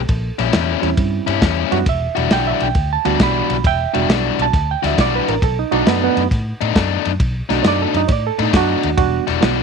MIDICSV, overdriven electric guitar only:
0, 0, Header, 1, 2, 480
1, 0, Start_track
1, 0, Key_signature, 1, "minor"
1, 0, Tempo, 444115
1, 103, Time_signature, 4, 2, 24, 8
1, 10407, End_track
2, 0, Start_track
2, 0, Title_t, "Overdriven electric guitar"
2, 0, Program_c, 0, 29
2, 419, Note_on_c, 0, 64, 99
2, 422, Note_on_c, 0, 61, 94
2, 425, Note_on_c, 0, 55, 101
2, 429, Note_on_c, 0, 46, 87
2, 555, Note_off_c, 0, 46, 0
2, 564, Note_off_c, 0, 55, 0
2, 568, Note_off_c, 0, 61, 0
2, 568, Note_on_c, 0, 46, 79
2, 572, Note_off_c, 0, 64, 0
2, 576, Note_on_c, 0, 55, 85
2, 581, Note_on_c, 0, 61, 79
2, 585, Note_on_c, 0, 64, 73
2, 945, Note_off_c, 0, 46, 0
2, 950, Note_off_c, 0, 55, 0
2, 952, Note_off_c, 0, 61, 0
2, 954, Note_off_c, 0, 64, 0
2, 1370, Note_on_c, 0, 64, 115
2, 1371, Note_on_c, 0, 61, 97
2, 1378, Note_on_c, 0, 55, 98
2, 1380, Note_on_c, 0, 46, 80
2, 1512, Note_off_c, 0, 46, 0
2, 1518, Note_off_c, 0, 55, 0
2, 1525, Note_on_c, 0, 46, 67
2, 1526, Note_off_c, 0, 61, 0
2, 1528, Note_off_c, 0, 64, 0
2, 1531, Note_on_c, 0, 55, 75
2, 1539, Note_on_c, 0, 61, 78
2, 1541, Note_on_c, 0, 64, 70
2, 1904, Note_off_c, 0, 46, 0
2, 1907, Note_off_c, 0, 55, 0
2, 1911, Note_off_c, 0, 61, 0
2, 1912, Note_off_c, 0, 64, 0
2, 2328, Note_on_c, 0, 66, 110
2, 2336, Note_on_c, 0, 62, 104
2, 2340, Note_on_c, 0, 55, 87
2, 2343, Note_on_c, 0, 52, 95
2, 2484, Note_off_c, 0, 52, 0
2, 2488, Note_off_c, 0, 55, 0
2, 2489, Note_off_c, 0, 62, 0
2, 2494, Note_off_c, 0, 66, 0
2, 2497, Note_on_c, 0, 52, 76
2, 2501, Note_on_c, 0, 55, 69
2, 2502, Note_on_c, 0, 62, 74
2, 2508, Note_on_c, 0, 66, 86
2, 2870, Note_off_c, 0, 52, 0
2, 2872, Note_off_c, 0, 55, 0
2, 2872, Note_off_c, 0, 62, 0
2, 2875, Note_off_c, 0, 66, 0
2, 3302, Note_on_c, 0, 66, 100
2, 3311, Note_on_c, 0, 62, 104
2, 3313, Note_on_c, 0, 55, 86
2, 3314, Note_on_c, 0, 52, 87
2, 3452, Note_off_c, 0, 52, 0
2, 3458, Note_off_c, 0, 55, 0
2, 3458, Note_off_c, 0, 62, 0
2, 3461, Note_off_c, 0, 66, 0
2, 3465, Note_on_c, 0, 52, 67
2, 3471, Note_on_c, 0, 55, 72
2, 3471, Note_on_c, 0, 62, 77
2, 3477, Note_on_c, 0, 66, 65
2, 3834, Note_off_c, 0, 52, 0
2, 3837, Note_off_c, 0, 55, 0
2, 3837, Note_off_c, 0, 62, 0
2, 3840, Note_off_c, 0, 66, 0
2, 4258, Note_on_c, 0, 66, 108
2, 4261, Note_on_c, 0, 62, 101
2, 4263, Note_on_c, 0, 55, 96
2, 4269, Note_on_c, 0, 52, 86
2, 4404, Note_off_c, 0, 52, 0
2, 4412, Note_off_c, 0, 55, 0
2, 4416, Note_off_c, 0, 66, 0
2, 4417, Note_on_c, 0, 52, 83
2, 4421, Note_off_c, 0, 62, 0
2, 4424, Note_on_c, 0, 55, 80
2, 4429, Note_on_c, 0, 66, 85
2, 4432, Note_on_c, 0, 62, 89
2, 4791, Note_off_c, 0, 52, 0
2, 4794, Note_off_c, 0, 55, 0
2, 4796, Note_off_c, 0, 66, 0
2, 4798, Note_off_c, 0, 62, 0
2, 5218, Note_on_c, 0, 66, 109
2, 5226, Note_on_c, 0, 55, 86
2, 5226, Note_on_c, 0, 62, 95
2, 5230, Note_on_c, 0, 52, 82
2, 5371, Note_off_c, 0, 52, 0
2, 5374, Note_off_c, 0, 55, 0
2, 5380, Note_off_c, 0, 66, 0
2, 5383, Note_off_c, 0, 62, 0
2, 5384, Note_on_c, 0, 52, 76
2, 5387, Note_on_c, 0, 55, 73
2, 5392, Note_on_c, 0, 66, 81
2, 5394, Note_on_c, 0, 62, 72
2, 5754, Note_off_c, 0, 52, 0
2, 5756, Note_off_c, 0, 55, 0
2, 5758, Note_off_c, 0, 66, 0
2, 5759, Note_off_c, 0, 62, 0
2, 6184, Note_on_c, 0, 63, 116
2, 6188, Note_on_c, 0, 62, 100
2, 6191, Note_on_c, 0, 57, 88
2, 6197, Note_on_c, 0, 47, 88
2, 6334, Note_off_c, 0, 47, 0
2, 6336, Note_off_c, 0, 57, 0
2, 6340, Note_off_c, 0, 62, 0
2, 6343, Note_off_c, 0, 63, 0
2, 6347, Note_on_c, 0, 47, 73
2, 6349, Note_on_c, 0, 57, 77
2, 6353, Note_on_c, 0, 62, 81
2, 6357, Note_on_c, 0, 63, 86
2, 6716, Note_off_c, 0, 47, 0
2, 6717, Note_off_c, 0, 57, 0
2, 6719, Note_off_c, 0, 62, 0
2, 6721, Note_off_c, 0, 63, 0
2, 7143, Note_on_c, 0, 63, 110
2, 7151, Note_on_c, 0, 62, 98
2, 7156, Note_on_c, 0, 57, 91
2, 7158, Note_on_c, 0, 47, 86
2, 7290, Note_off_c, 0, 47, 0
2, 7291, Note_off_c, 0, 57, 0
2, 7295, Note_off_c, 0, 62, 0
2, 7303, Note_off_c, 0, 63, 0
2, 7303, Note_on_c, 0, 47, 62
2, 7304, Note_on_c, 0, 57, 66
2, 7308, Note_on_c, 0, 62, 84
2, 7316, Note_on_c, 0, 63, 73
2, 7674, Note_off_c, 0, 47, 0
2, 7675, Note_off_c, 0, 57, 0
2, 7676, Note_off_c, 0, 62, 0
2, 7680, Note_off_c, 0, 63, 0
2, 8100, Note_on_c, 0, 63, 113
2, 8107, Note_on_c, 0, 62, 95
2, 8110, Note_on_c, 0, 57, 90
2, 8115, Note_on_c, 0, 47, 98
2, 8252, Note_off_c, 0, 47, 0
2, 8260, Note_off_c, 0, 57, 0
2, 8260, Note_off_c, 0, 62, 0
2, 8261, Note_off_c, 0, 63, 0
2, 8265, Note_on_c, 0, 47, 74
2, 8273, Note_on_c, 0, 57, 83
2, 8273, Note_on_c, 0, 62, 89
2, 8281, Note_on_c, 0, 63, 91
2, 8635, Note_off_c, 0, 47, 0
2, 8639, Note_off_c, 0, 57, 0
2, 8639, Note_off_c, 0, 62, 0
2, 8643, Note_off_c, 0, 63, 0
2, 9068, Note_on_c, 0, 63, 105
2, 9072, Note_on_c, 0, 62, 88
2, 9079, Note_on_c, 0, 57, 90
2, 9084, Note_on_c, 0, 47, 85
2, 9207, Note_off_c, 0, 47, 0
2, 9214, Note_off_c, 0, 57, 0
2, 9216, Note_off_c, 0, 62, 0
2, 9220, Note_on_c, 0, 47, 73
2, 9225, Note_off_c, 0, 63, 0
2, 9227, Note_on_c, 0, 57, 70
2, 9229, Note_on_c, 0, 62, 81
2, 9236, Note_on_c, 0, 63, 83
2, 9593, Note_off_c, 0, 47, 0
2, 9596, Note_off_c, 0, 57, 0
2, 9597, Note_off_c, 0, 62, 0
2, 9601, Note_off_c, 0, 63, 0
2, 10021, Note_on_c, 0, 66, 103
2, 10026, Note_on_c, 0, 62, 100
2, 10027, Note_on_c, 0, 55, 87
2, 10034, Note_on_c, 0, 52, 89
2, 10169, Note_off_c, 0, 52, 0
2, 10175, Note_off_c, 0, 55, 0
2, 10181, Note_off_c, 0, 62, 0
2, 10182, Note_off_c, 0, 66, 0
2, 10182, Note_on_c, 0, 52, 89
2, 10188, Note_on_c, 0, 55, 92
2, 10194, Note_on_c, 0, 62, 79
2, 10197, Note_on_c, 0, 66, 89
2, 10407, Note_off_c, 0, 52, 0
2, 10407, Note_off_c, 0, 55, 0
2, 10407, Note_off_c, 0, 62, 0
2, 10407, Note_off_c, 0, 66, 0
2, 10407, End_track
0, 0, End_of_file